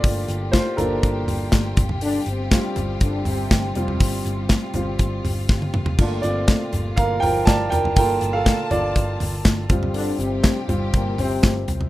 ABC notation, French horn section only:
X:1
M:4/4
L:1/8
Q:1/4=121
K:Gm
V:1 name="French horn section" clef=bass
z8 | [D,D] [C,C]2 z [D,D] [C,C]2 z | z8 | [D,D] [C,C]2 z [B,,B,] [F,F]2 z |
z8 | [D,D] [C,C]2 z [B,,B,] [C,C]2 z |]